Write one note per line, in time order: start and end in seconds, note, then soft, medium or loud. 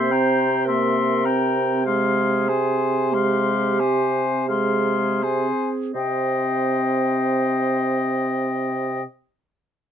0.00 5.48 C3 soft
0.00 0.13 A#3 soft
0.00 0.67 C5 medium
0.00 0.13 E5 soft
0.00 0.14 C6 soft
0.11 0.51 C4 soft
0.11 0.67 G5 soft
0.11 0.67 A#5 soft
0.65 1.27 A#3 soft
0.65 1.85 A#4 medium
0.65 1.27 E5 soft
0.65 1.27 C6 soft
1.25 1.86 C4 soft
1.25 1.85 G5 soft
1.25 1.86 A#5 soft
1.85 2.51 G#3 soft
1.85 3.13 G#4 medium
1.85 2.50 F5 soft
1.85 2.50 C6 soft
2.48 3.16 C4 soft
2.48 3.16 C5 soft
2.48 3.15 G#5 soft
3.12 3.82 G#3 soft
3.12 4.50 G4 medium
3.12 3.82 F5 soft
3.12 3.81 C6 soft
3.80 4.49 C4 soft
3.80 4.48 C5 soft
3.80 4.49 G#5 soft
4.48 5.25 G#3 soft
4.48 5.93 G#4 soft
4.48 5.24 F5 soft
4.48 5.25 C6 soft
5.22 5.95 C4 soft
5.22 5.78 C5 soft
5.22 5.70 G#5 soft
5.94 9.02 C3 soft
5.94 9.03 C4 soft
5.94 9.00 C5 soft
5.94 9.02 D#5 soft
5.94 9.03 G5 soft